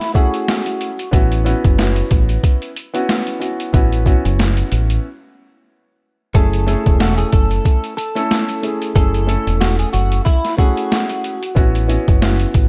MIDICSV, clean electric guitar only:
0, 0, Header, 1, 2, 480
1, 0, Start_track
1, 0, Key_signature, 3, "minor"
1, 0, Tempo, 652174
1, 831, Time_signature, 4, 2, 24, 8
1, 9337, End_track
2, 0, Start_track
2, 0, Title_t, "Clean electric guitar"
2, 0, Program_c, 0, 27
2, 0, Note_on_c, 0, 64, 87
2, 83, Note_off_c, 0, 64, 0
2, 111, Note_on_c, 0, 66, 88
2, 802, Note_off_c, 0, 66, 0
2, 4673, Note_on_c, 0, 69, 110
2, 5123, Note_off_c, 0, 69, 0
2, 5160, Note_on_c, 0, 66, 78
2, 5276, Note_off_c, 0, 66, 0
2, 5279, Note_on_c, 0, 68, 92
2, 5377, Note_off_c, 0, 68, 0
2, 5397, Note_on_c, 0, 69, 81
2, 5845, Note_off_c, 0, 69, 0
2, 5866, Note_on_c, 0, 69, 80
2, 6559, Note_off_c, 0, 69, 0
2, 6592, Note_on_c, 0, 69, 110
2, 7043, Note_off_c, 0, 69, 0
2, 7070, Note_on_c, 0, 66, 80
2, 7191, Note_off_c, 0, 66, 0
2, 7208, Note_on_c, 0, 68, 79
2, 7302, Note_off_c, 0, 68, 0
2, 7307, Note_on_c, 0, 66, 77
2, 7525, Note_off_c, 0, 66, 0
2, 7544, Note_on_c, 0, 64, 87
2, 7763, Note_off_c, 0, 64, 0
2, 7791, Note_on_c, 0, 66, 87
2, 8482, Note_off_c, 0, 66, 0
2, 9337, End_track
0, 0, End_of_file